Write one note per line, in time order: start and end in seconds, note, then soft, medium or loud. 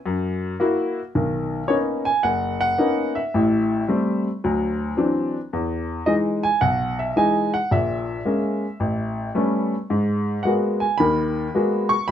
0.06 0.53 F#2 medium
0.60 0.98 A#3 medium
0.60 0.99 E4 medium
0.60 0.99 F#4 medium
1.15 1.62 B1 medium
1.15 1.62 D#3 medium
1.68 2.08 A#3 soft
1.68 2.08 B3 soft
1.68 2.08 C#4 soft
1.68 2.08 D#4 medium
1.68 1.76 C#5 medium
2.05 2.24 G#5 medium
2.23 2.71 F#1 medium
2.23 2.58 F#5 medium
2.61 3.17 F#5 loud
2.78 3.17 A#3 medium
2.78 3.17 B3 soft
2.78 3.17 C#4 soft
2.78 3.17 D#4 medium
3.15 4.21 E5 medium
3.34 3.81 A1 medium
3.34 3.81 A2 medium
3.88 4.27 G3 medium
3.88 4.27 A3 soft
3.88 4.27 C4 medium
4.44 4.91 D2 medium
4.44 4.91 F#3 medium
4.97 5.36 E3 medium
4.97 5.36 F#3 soft
4.97 5.36 C4 soft
4.97 5.36 D4 medium
5.53 6.00 E2 medium
6.06 6.45 E3 medium
6.06 6.45 G#3 soft
6.06 6.45 D#4 medium
6.06 6.15 D#5 medium
6.43 6.60 G#5 medium
6.61 7.09 B1 medium
6.61 6.99 F#5 medium
6.99 7.17 E5 medium
7.16 7.55 E3 medium
7.16 7.55 G#3 soft
7.16 7.55 D#4 medium
7.16 7.51 G#5 medium
7.54 7.71 F#5 medium
7.71 8.19 A#1 medium
7.71 8.19 A#2 medium
7.71 9.68 E5 medium
8.25 8.64 G#3 soft
8.25 8.64 A#3 soft
8.25 8.64 C#4 soft
8.80 9.27 A1 medium
9.35 9.73 G3 soft
9.35 9.74 A3 medium
9.35 9.74 B3 soft
9.35 9.74 C#4 medium
9.90 10.37 G#2 medium
10.43 10.83 G#3 medium
10.43 10.83 A#3 soft
10.43 10.83 B3 soft
10.43 10.83 F#4 soft
10.43 10.51 F#5 medium
10.80 10.97 G#5 medium
10.98 11.46 D#2 medium
10.98 11.47 D#3 medium
10.98 11.92 B5 medium
11.55 11.92 G#3 medium
11.55 11.93 A#3 soft
11.55 11.93 B3 soft
11.55 11.93 F#4 medium
11.89 12.06 C#6 medium
12.08 12.11 B5 loud